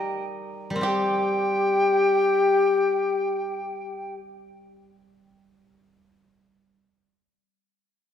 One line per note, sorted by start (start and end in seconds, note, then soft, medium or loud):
0.00 0.69 G3 medium
0.00 1.13 D#4 medium
0.00 0.22 G4 loud
0.00 0.80 G4 medium
0.00 1.71 A#4 soft
0.00 2.00 D#5 medium
0.00 0.26 G5 loud
0.70 6.77 G3 medium
0.70 0.83 A#4 medium
0.76 5.86 C4 medium
0.81 4.81 G4 medium
0.81 4.15 G4 medium
0.81 0.89 A#4 loud
0.81 4.15 G5 medium
0.88 4.19 G4 loud